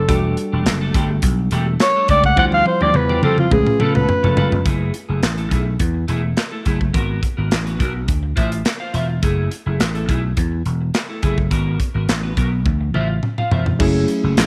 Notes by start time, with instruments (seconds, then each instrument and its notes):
Already playing: alto saxophone A4
0.08 slap bass E1, tine electric piano G3 D4 F#4 A4, clean electric guitar A3 D4 G4, kick, closed hi-hat
0.37 muted clean electric guitar stroke, closed hi-hat
0.52 slap bass E1, clean electric guitar A3 D4 G4
0.66 slap bass F#1, muted clean electric guitar stroke, snare, clap, closed hi-hat
0.81 clean electric guitar A3 D4 A4
0.94 slap bass G1, clean electric guitar A3 D4 G4, kick, closed hi-hat
1.10 muted clean electric guitar stroke
1.22 slap bass B1, muted clean electric guitar stroke, kick, closed hi-hat
1.39 muted clean electric guitar stroke
1.51 slap bass E1, clean electric guitar A3 D4 G4, closed hi-hat
1.67 muted clean electric guitar stroke
1.80 alto saxophone C#5, muted clean electric guitar stroke, snare, clap, closed hi-hat
1.96 clean electric guitar A3 D4 A4
2.08 slap bass C#2, clean electric guitar A3 D4 G4, alto saxophone D5, kick, closed hi-hat
2.24 alto saxophone F#5, muted clean electric guitar stroke, kick
2.36 slap bass D2, tine electric piano G3 E4 F4 C5, clean electric guitar F4 G4 C5, alto saxophone F#5, kick, high tom
2.52 alto saxophone F5, high tom
2.66 alto saxophone C5, muted clean electric guitar stroke, high tom
2.81 slap bass D2, clean electric guitar F4 G4 C5, alto saxophone D5, high tom
2.94 slap bass E2, alto saxophone B4, muted clean electric guitar stroke, mid tom
3.09 clean electric guitar F4 G4 D5, mid tom
3.22 slap bass F2, clean electric guitar F4 G4 C5, alto saxophone A4, mid tom
3.38 alto saxophone F4, muted clean electric guitar stroke, mid tom
3.51 slap bass C#2, analog polysynth F3 B3 G#4, tine electric piano A3 C#4 F4 B4, alto saxophone G#4, muted clean electric guitar stroke, kick, mid tom
3.66 muted clean electric guitar stroke, mid tom
3.80 slap bass C#3, clean electric guitar F4 A4 B4, alto saxophone A4, mid tom
3.95 slap bass C#2, analog polysynth F3 B3 A4, alto saxophone B4, muted clean electric guitar stroke, mid tom
4.08 muted clean electric guitar stroke, floor tom
4.23 slap bass F1, analog polysynth G#3 F4 B4, clean electric guitar F4 A4 C#5, floor tom
4.37 slap bass F#1, clean electric guitar F4 A4 B4, floor tom
4.51 slap bass F1, muted clean electric guitar stroke, floor tom
4.65 slap bass F#1, clean electric guitar A3 E4 G#4, kick, closed hi-hat
4.94 muted clean electric guitar stroke, closed hi-hat
5.09 slap bass F#1, clean electric guitar A3 E4 G#4
5.22 slap bass A1, muted clean electric guitar stroke, snare, clap, closed hi-hat
5.37 clean electric guitar A3 E4 A4, closed hi-hat
5.51 slap bass B1, clean electric guitar A3 E4 G#4, kick, closed hi-hat
5.65 muted clean electric guitar stroke
5.79 slap bass E2, muted clean electric guitar stroke, kick, closed hi-hat
5.94 muted clean electric guitar stroke
6.08 slap bass E1, clean electric guitar A3 E4 G#4, closed hi-hat
6.23 muted clean electric guitar stroke
6.36 muted clean electric guitar stroke, snare, clap, closed hi-hat
6.51 clean electric guitar A3 E4 A4
6.65 slap bass F#1, clean electric guitar A3 E4 G#4, kick, closed hi-hat
6.80 muted clean electric guitar stroke, kick
6.93 slap bass G#1, clean electric guitar B3 F#4 A#4, kick, closed hi-hat
7.22 muted clean electric guitar stroke, kick, closed hi-hat
7.37 slap bass G#1, clean electric guitar B3 F#4 A#4
7.51 slap bass A1, muted clean electric guitar stroke, snare, clap, closed hi-hat
7.66 clean electric guitar B3 F#4 B4, closed hi-hat
7.79 slap bass B1, clean electric guitar B3 F#4 A#4, kick, closed hi-hat
7.94 muted clean electric guitar stroke
8.08 slap bass D2, muted clean electric guitar stroke, kick, closed hi-hat
8.23 muted clean electric guitar stroke
8.36 slap bass A1, clean electric guitar F4 C5 E5, kick, closed hi-hat
8.52 muted clean electric guitar stroke, closed hi-hat
8.65 muted clean electric guitar stroke, snare, clap, closed hi-hat
8.80 clean electric guitar F4 C5 F5
8.93 slap bass E1, clean electric guitar F4 C5 E5, closed hi-hat
9.09 muted clean electric guitar stroke
9.22 slap bass F#1, clean electric guitar A3 E4 G#4, kick, closed hi-hat
9.51 muted clean electric guitar stroke, closed hi-hat
9.66 slap bass F#1, clean electric guitar A3 E4 G#4
9.79 slap bass A1, muted clean electric guitar stroke, snare, clap, closed hi-hat
9.95 clean electric guitar A3 E4 A4, closed hi-hat
10.08 slap bass B1, clean electric guitar A3 E4 G#4, kick, closed hi-hat
10.23 muted clean electric guitar stroke
10.37 slap bass E2, muted clean electric guitar stroke, kick, closed hi-hat
10.52 muted clean electric guitar stroke
10.65 slap bass E1, closed hi-hat
10.81 muted clean electric guitar stroke
10.94 muted clean electric guitar stroke, snare, clap, closed hi-hat
11.09 clean electric guitar A3 E4 A4
11.22 slap bass F#1, clean electric guitar A3 E4 G#4, kick, closed hi-hat
11.38 muted clean electric guitar stroke, kick
11.51 slap bass G#1, clean electric guitar B3 F#4 A#4, kick, closed hi-hat
11.80 muted clean electric guitar stroke, kick, closed hi-hat
11.94 slap bass G#1, clean electric guitar B3 F#4 A#4
12.08 slap bass A1, muted clean electric guitar stroke, snare, clap, closed hi-hat
12.23 clean electric guitar B3 F#4 B4
12.37 slap bass B1, clean electric guitar B3 F#4 A#4, kick, closed hi-hat
12.52 muted clean electric guitar stroke
12.65 slap bass D2, muted clean electric guitar stroke, kick, high tom
12.81 muted clean electric guitar stroke
12.94 slap bass A1, clean electric guitar F4 C5 E5, mid tom
13.09 muted clean electric guitar stroke
13.23 muted clean electric guitar stroke, mid tom
13.38 clean electric guitar F4 C5 F5, mid tom
13.51 slap bass E1, clean electric guitar F4 C5 E5, floor tom
13.66 muted clean electric guitar stroke, floor tom
13.79 slap bass F#1, tine electric piano F#3 A3 C#4 E4 G#4, clean electric guitar A3 E4 G#4, kick, crash
14.08 muted clean electric guitar stroke, closed hi-hat
14.24 slap bass F#1, clean electric guitar A3 E4 G#4
14.37 slap bass A1, muted clean electric guitar stroke, snare, clap, closed hi-hat